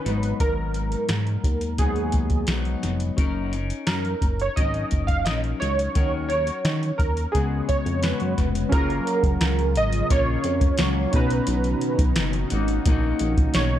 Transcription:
Already playing: F#4 B4
0.05 G#1 F#3 B3 D#4, snare, closed hi-hat
0.10 G#2
0.23 closed hi-hat
0.40 G#1 A#4, kick, closed hi-hat
0.74 closed hi-hat
0.92 closed hi-hat
1.09 G#2, snare, closed hi-hat
1.27 closed hi-hat
1.44 D#2, kick, closed hi-hat
1.61 closed hi-hat
1.78 G#2 F#3 B3 D#4 G#4, kick, closed hi-hat
1.96 closed hi-hat
2.12 kick, closed hi-hat
2.30 kick, closed hi-hat
2.47 B1 G#2 F#3 B3 D#4, snare, closed hi-hat
2.65 closed hi-hat
2.83 F1, snare, closed hi-hat
3.00 closed hi-hat
3.17 F#1 F#3 C#4 D#4 A#4, kick, closed hi-hat
3.51 C#4 D#4 A#4, closed hi-hat
3.70 closed hi-hat
3.87 F#2 A#4, snare, closed hi-hat
4.05 closed hi-hat
4.22 F#1, kick, closed hi-hat
4.40 C#5, closed hi-hat
4.56 G#1 F#3 C#4 D#4 A#4 D#5, kick, closed hi-hat
4.74 closed hi-hat
4.91 F#1, kick, closed hi-hat
5.07 F5, kick, closed hi-hat
5.25 A#1 F#3 C#4 D#4 D#5, snare, closed hi-hat
5.30 A#4
5.44 closed hi-hat
5.60 C#2 C#5, snare, closed hi-hat
5.79 closed hi-hat
5.95 D#2 D#3 C#4 F#4 A#4, kick, closed hi-hat
6.29 F#4 A#4 C#5, closed hi-hat
6.34 C#4
6.47 closed hi-hat
6.65 D#3, snare, closed hi-hat
6.83 closed hi-hat
6.98 D#2 A#4, kick, closed hi-hat
7.17 closed hi-hat
7.32 C#2 C#3 G#3 B3 G#4, kick, closed hi-hat
7.36 F#4
7.69 F2 C#5, kick, closed hi-hat
7.86 F2, closed hi-hat
8.01 C#3 G#3 B3 F#4 B4, snare, closed hi-hat
8.20 F#2, closed hi-hat
8.38 F1, kick, snare, closed hi-hat
8.55 closed hi-hat
8.69 F#1 C#3 F#3 A#3 C#4 F4 G#4 A#4, kick, closed hi-hat
8.74 C#4 F4 A#4
8.90 closed hi-hat
9.07 closed hi-hat
9.23 F#1, kick, closed hi-hat
9.41 C#2, snare, closed hi-hat
9.59 closed hi-hat
9.76 G#1 D#5, closed hi-hat
9.93 closed hi-hat
10.10 A#1 A#3 C#4 F4 C#5, kick, closed hi-hat
10.44 F2, closed hi-hat
10.61 kick, closed hi-hat
10.78 C#2 F#3 A#3 C#4 F4, snare, closed hi-hat
11.11 B1 D#3 C#4 D#4 F#4, kick, closed hi-hat
11.16 B2 B4 A#5
11.30 closed hi-hat
11.47 B1, closed hi-hat
11.64 closed hi-hat
11.81 closed hi-hat
11.99 B1, kick, closed hi-hat
12.16 F#1, snare, closed hi-hat
12.33 closed hi-hat
12.50 G#1 A#3 D#4 F#4, closed hi-hat
12.68 closed hi-hat
12.86 A#1 A#3 D#4 F#4, kick, closed hi-hat
13.19 A#1, closed hi-hat
13.37 kick, closed hi-hat
13.54 B1 C#5, snare, closed hi-hat

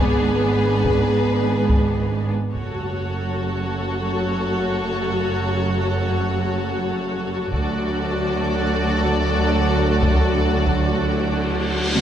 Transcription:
Already playing: G#1 G#2 B3 D4 G#4
0.00 G#4 B4
0.85 taiko
1.70 taiko
2.53 F#1 F#2 C#3 F#3 A3 F#4 A4 C#5, taiko
7.52 D2 D3 F#3 A3 F#4 A4 D5, taiko
10.03 taiko, cymbal swell
10.67 taiko
11.95 taiko high

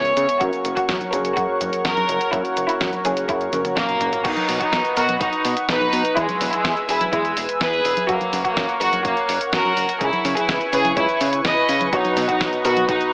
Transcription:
Already playing: C#2 C#3 G#3 B3 C#4 E4 A#4 C#5 E5 G#5 C#6
0.05 closed hi-hat, cabasa
0.17 C#3, closed hi-hat, cabasa
0.29 closed hi-hat, cabasa
0.41 F#2 F#3 A#3 C#4 F#4 A#4 C#5 F#5, kick, closed hi-hat, cabasa
0.53 closed hi-hat, cabasa
0.65 F#1, closed hi-hat, cabasa
0.77 F#4, kick, closed hi-hat, cabasa
0.89 F#2, kick, snare, closed hi-hat, cabasa
1.01 closed hi-hat, high conga, cabasa
1.13 F#1 F#3 A#3 C#4 G#4 A#4, closed hi-hat, cabasa
1.25 closed hi-hat, cabasa
1.37 F#2 F#4, kick, closed hi-hat, cabasa
1.61 F#1, closed hi-hat, high conga, cabasa
1.73 closed hi-hat, cabasa
1.85 F#2 A#4, kick, snare, closed hi-hat, cabasa
1.97 closed hi-hat, high conga, cabasa
2.09 F#1, closed hi-hat, cabasa
2.21 closed hi-hat, cabasa
2.33 F#2 F#3 A#3 C#4 E4 A#4, kick, closed hi-hat, cabasa
2.45 closed hi-hat, cabasa
2.57 F#1, closed hi-hat, cabasa
2.69 E4, closed hi-hat, cabasa
2.81 F#2, kick, snare, closed hi-hat, cabasa
2.93 closed hi-hat, high conga, cabasa
3.05 F#1 F#3 A#3 C#4 G#4, closed hi-hat, cabasa
3.17 closed hi-hat, cabasa
3.29 F#2 E4, kick, closed hi-hat, cabasa
3.41 closed hi-hat, cabasa
3.53 F#1 F#3 A#3 C#4 A#4, closed hi-hat, high tom, high conga, cabasa
3.65 closed hi-hat, high tom, cabasa
3.77 F#2 A#3, kick, snare, closed hi-hat, mid tom, cabasa
3.89 closed hi-hat, mid tom, cabasa
4.01 F#1, closed hi-hat, mid tom, cabasa
4.13 closed hi-hat, mid tom, cabasa
4.25 B1 D#4 F#4 B4 D#5 F#5 C#6, kick, closed hi-hat, crash, cabasa
4.37 closed hi-hat, high conga, cabasa
4.49 B2, open hi-hat, high conga, cabasa
4.61 D#4 F#4, kick, closed hi-hat, cabasa
4.73 B1, kick, snare, closed hi-hat, cabasa
4.85 closed hi-hat, cabasa
4.97 B2 F#4 A#4, open hi-hat, cabasa
5.09 closed hi-hat, high conga, cabasa
5.21 B1 D#4 F#4, kick, closed hi-hat, cabasa
5.33 closed hi-hat, cabasa
5.45 B2, open hi-hat, cabasa
5.57 closed hi-hat, cabasa
5.69 B1 D#4 B4, kick, snare, closed hi-hat, cabasa
5.81 high conga, cabasa
5.93 B2, open hi-hat, cabasa
6.05 closed hi-hat, cabasa
6.17 E2 G#3 E4 E5 G#5 E6, kick, closed hi-hat, cabasa
6.29 closed hi-hat, high conga, cabasa
6.41 E1, open hi-hat, high conga, cabasa
6.53 G#3 E4, closed hi-hat, cabasa
6.65 E2, kick, snare, closed hi-hat, cabasa
6.77 closed hi-hat, cabasa
6.89 E1 E4 G#4, open hi-hat, cabasa
7.01 closed hi-hat, high conga, cabasa
7.13 E2 G#3 E4, kick, closed hi-hat, cabasa
7.25 closed hi-hat, cabasa
7.37 E1, open hi-hat, cabasa
7.49 closed hi-hat, cabasa
7.61 E2 G#4 B4, kick, snare, closed hi-hat, cabasa
7.73 cabasa
7.85 E1, open hi-hat, cabasa
7.97 closed hi-hat, high conga, cabasa
8.09 F#2 A#3 F#4 A#4 C#5 F#5 C#6, kick, closed hi-hat, cabasa
8.21 closed hi-hat, high conga, cabasa
8.33 F#1, open hi-hat, high conga, cabasa
8.45 A#3 F#4, kick, closed hi-hat, cabasa
8.57 F#2, kick, snare, closed hi-hat, cabasa
8.69 closed hi-hat, cabasa
8.81 F#1 F#4 A#4, open hi-hat, cabasa
8.93 closed hi-hat, high conga, cabasa
9.05 F#2 A#3 F#4, kick, closed hi-hat, cabasa
9.17 closed hi-hat, cabasa
9.29 F#1, open hi-hat, cabasa
9.41 closed hi-hat, cabasa
9.53 F#2 F#4 A#4, kick, snare, closed hi-hat, cabasa
9.65 high conga, cabasa
9.77 F#1, open hi-hat, cabasa
9.89 closed hi-hat, cabasa
10.01 C#2 E4 G#4 B4 G#5, kick, closed hi-hat, cabasa
10.13 closed hi-hat, high conga, cabasa
10.25 C#3, open hi-hat, high conga, cabasa
10.37 E4 G#4, closed hi-hat, cabasa
10.49 C#2, kick, snare, closed hi-hat, cabasa
10.61 closed hi-hat, cabasa
10.73 C#3 G#4 B4, open hi-hat, cabasa
10.85 closed hi-hat, high conga, cabasa
10.97 C#2 E4 C#5, kick, closed hi-hat, cabasa
11.09 closed hi-hat, cabasa
11.21 C#3, open hi-hat, cabasa
11.33 closed hi-hat, cabasa
11.45 C#2 B4 D#5, kick, snare, closed hi-hat, cabasa
11.57 cabasa
11.69 C#3, open hi-hat, cabasa
11.81 closed hi-hat, high conga, cabasa
11.93 B1 B2 B3 D#4 F#4 C#5 D#5 F#5, kick, closed hi-hat, cabasa
12.05 closed hi-hat, high conga, cabasa
12.17 B2, open hi-hat, high conga, cabasa
12.29 D#4 F#4, kick, closed hi-hat, cabasa
12.41 B1, kick, snare, closed hi-hat, cabasa
12.53 closed hi-hat, cabasa
12.65 B2 B3 D#4 F#4 A#4 B4, open hi-hat, cabasa
12.77 closed hi-hat, high conga, cabasa
12.89 B1 D#4 F#4, kick, closed hi-hat, cabasa
13.01 closed hi-hat, cabasa

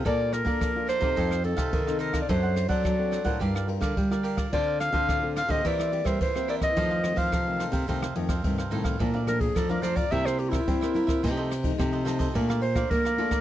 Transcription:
0.05 A#2 A#3 D4 F4 A4 D5 F5 A#5, kick, ride
0.19 D5 F5 A#5
0.33 A#4, muted cavaquinho stroke, cross-stick, ride
0.45 A#3 D4 F4 A4 D5 F5 A#5, kick, ride
0.60 F3 A4 D5 F5 A#5, kick, cross-stick, ride
0.76 D4 F4 A4
0.88 A4 C5 D5 F5 A#5, cross-stick, ride
1.01 C3 C4 D#4 A4 D5 F5 A#5, kick, ride
1.16 F2 F3 D#4 A4 C5 F5, kick, ride
1.30 A4 C5 F5, cross-stick
1.44 C4 D#4 A4, muted cavaquinho stroke, ride
1.56 C3 A4 C5 F5, kick, cross-stick, ride
1.73 C3 D#3, kick, ride
1.87 C4 D#4 A4 C5 F5, cross-stick
1.99 D#4 A4 A#4 C5 F5, ride
2.13 A4 C5 F5, kick, cross-stick, ride
2.22 D5
2.29 F#2 F#3 C4 D4 A4 C5 F#5, kick, ride
2.43 A4 C5 F#5
2.56 muted cavaquinho stroke, cross-stick, ride
2.69 F#3 C4 D4 A4 C5 D5 F#5, kick, ride
2.83 F#3 D4 A4 C5 F#5, kick, cross-stick, ride
2.98 C4 D4 A4
3.11 D4 A4 C5 F#5, cross-stick, ride
3.24 A2 D4 F4 A4 A#4 C5 F#5, kick, ride
3.40 G2 G3 G4 A#4 D5 F5, kick, ride
3.55 A#4 D5 F5, cross-stick
3.67 D4 F4 A#4, muted cavaquinho stroke, ride
3.81 D3 A#4 D5 F5, kick, cross-stick, ride
3.96 D3 G3, kick, ride
4.10 D4 F4 A#4 D5 F5, cross-stick
4.23 G4 A#4 D5 F5, ride
4.37 A#4 D5 F5, kick, cross-stick, ride
4.52 D3 C4 D4 F4 A4 C5 D5 F5, kick, ride
4.67 A4 C5 F5
4.80 F5, muted cavaquinho stroke, cross-stick, ride
4.92 D3 C4 F4 A4 C5 F5, kick, ride
5.08 A2 D4 A4 C5 F5, kick, cross-stick, ride
5.23 C4 F4 A4
5.36 D4 A4 C5 F5, cross-stick, ride
5.48 D3 A#3 C4 G4 A4 C5 D#5 F5, kick, ride
5.65 E3 E4 A#4 C5 D5 E5, kick, ride
5.79 A#4 C5 E5, cross-stick
5.92 A#3 C4 G4, muted cavaquinho stroke, ride
6.04 G3 A#4 C5 E5, kick, cross-stick, ride
6.21 E3 C5, kick, ride
6.35 A#3 C4 G4 A#4 C5 E5, cross-stick
6.48 E4 A#4 C5 D5 E5, ride
6.61 A#4 C5 D#5 E5, kick, cross-stick, ride
6.76 F2 D#3 F3 A3 C4 D#4 A4 C5 F5, kick, ride
6.91 A4 C5 F5
7.04 D#3 A3 C4, muted cavaquinho stroke, cross-stick, ride
7.16 F3 A4 C5 F5, kick, ride
7.32 C3 D#4 A4 C5 F5, kick, cross-stick, ride
7.47 D#3 A3 C4
7.59 D#4 A4 C5 F5, cross-stick, ride
7.72 C3 A4 C5 F5, kick, ride
7.88 F2 C3 D#3 A3 C4 D#4 A4 C5 F5, kick, ride
8.02 A4 C5 F5, cross-stick
8.15 F2 D#3 A3 C4, muted cavaquinho stroke, ride
8.29 A4 C5 F5, kick, cross-stick, ride
8.44 G2 C3 D#3 A3 C4, kick, ride
8.58 A4 C5 F5, cross-stick
8.71 A2 D#3 A3 C4 D#4 A4 C5 F5, ride
8.84 A4 C5 F5, kick, cross-stick, ride
8.99 A#2 F3 A3 D4 A4 D5 F5 A#5, kick, ride
9.14 F3 A3 D4 D5 F5 A#5
9.26 F3 A3 D4 A#4, muted cavaquinho stroke, cross-stick, ride
9.41 G#4, kick, ride
9.55 F2 F3 A4 D5 F5 A#5, kick, cross-stick, ride
9.69 F3 A3 D4 A#4 D5 F5 A#5
9.82 F3 A3 D4 A4 C5 D5 F5 A#5, cross-stick, ride
9.96 D5 F5 A#5, kick, ride
10.11 C3 G3 A#3 E4 A#4 C5 E5, kick, ride
10.25 A#4 C5 E5, cross-stick
10.38 G4, muted cavaquinho stroke, ride
10.49 E4 C5 E5, kick, cross-stick, ride
10.53 A#4
10.59 E4
10.67 G2 G3 A#3 C4 E4, kick, ride
10.81 A#4 C5 E5, cross-stick
10.94 G3 A#3 E4 A#4 C5 E5, ride
11.07 A#4 C5 E5, kick, cross-stick, ride
11.23 C3 F3 A3 D#4 F4 A4 C5 D#5, kick, ride
11.37 A4 C5 D#5
11.50 muted cavaquinho stroke, cross-stick, ride
11.63 F3 A3 D#4, kick, ride
11.78 C3 F4 A4 C5 D#5, kick, cross-stick, ride
11.93 A4 C5 D#5
12.05 F3 A3 D#4 F4 A4 C5 D#5, cross-stick, ride
12.19 A4 C5 D#5, kick, ride
12.34 A#2 A3 D4 F4 A4 D5 F5 A#5, kick, ride
12.49 D5 F5 A#5, cross-stick
12.61 C5, muted cavaquinho stroke, ride
12.75 A3 D4 F4 D5 F5 A#5, kick, cross-stick, ride
12.90 F3 A#3 A#4, kick, ride
13.05 D5 F5 A#5, cross-stick
13.18 A3 D4 F4 A4 D5 F5 A#5, ride
13.31 D5 F5 A#5, kick, cross-stick, ride

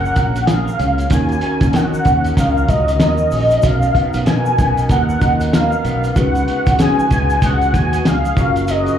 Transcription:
Already playing: F#1 F3 F#3 A#3 C#4 F#4 G#4 A#4 F#5
0.05 shaker
0.16 A#1, kick, closed hi-hat, shaker
0.36 closed hi-hat, shaker
0.46 G#4 F5, snare, closed hi-hat, shaker
0.64 A#4, shaker
0.78 C#2 C#4, closed hi-hat, shaker
0.98 closed hi-hat, shaker
1.09 D#2 D#3 C#4 D#4 F#4 A#4 G#5, kick, closed hi-hat, shaker
1.14 A#4
1.29 closed hi-hat, shaker
1.41 C#4, closed hi-hat
1.61 D#2, kick, closed hi-hat, shaker
1.73 D#3 A#4 F#5, snare, closed hi-hat, shaker
1.94 shaker
2.05 D#2 C#4, kick, closed hi-hat, shaker
2.24 closed hi-hat, shaker
2.37 C#2 A#4 F5, kick, snare, closed hi-hat, shaker
2.57 shaker
2.68 C#2 D#4 D#5, kick, closed hi-hat, shaker
2.88 closed hi-hat, shaker
3.00 D#2 A#4 D#5, snare, closed hi-hat, shaker
3.18 shaker
3.31 A#1 C#4, open hi-hat, shaker
3.51 closed hi-hat, shaker
3.62 B1 B2 B3 C#4 D#4 F#4 F5, kick, closed hi-hat, shaker
3.66 A#4
3.82 closed hi-hat, shaker
3.95 B3, kick, closed hi-hat
4.13 B1, closed hi-hat, shaker
4.26 B2 A#4 G#5, snare, closed hi-hat, shaker
4.46 shaker
4.58 B1 B3, kick, closed hi-hat, shaker
4.77 closed hi-hat, shaker
4.89 D#2 A#4 F#5, kick, closed hi-hat, shaker
5.10 shaker
5.20 D#2 C#4 D#4 F#4 A#4, kick, closed hi-hat, shaker
5.41 closed hi-hat, shaker
5.52 A#4 F5, snare, closed hi-hat, shaker
5.72 shaker
5.84 B1 B3, closed hi-hat, shaker
6.04 closed hi-hat, shaker
6.15 C#2 C#3 G#3 D#4 F#4 G#4 F#5, kick, closed hi-hat, shaker
6.19 B4
6.35 closed hi-hat, shaker
6.48 B3, closed hi-hat
6.66 C#2, kick, closed hi-hat, shaker
6.79 C#3 G#4 G#5, snare, closed hi-hat, shaker
6.99 shaker
7.11 C#2 B3, kick, closed hi-hat, shaker
7.30 closed hi-hat, shaker
7.42 C#2 G#4 F#5, kick, snare, closed hi-hat, shaker
7.62 closed hi-hat, shaker
7.73 D#2 F#4 G#5, kick, closed hi-hat, shaker
7.93 closed hi-hat, shaker
8.05 C#2 G#4 F5, snare, closed hi-hat, shaker
8.25 closed hi-hat, shaker
8.35 F#1 F#3 C#4 F4 G#4 A#4, kick, closed hi-hat, shaker
8.40 A#4
8.56 closed hi-hat, shaker
8.68 F#3 D#5, closed hi-hat, shaker
8.86 closed hi-hat, shaker

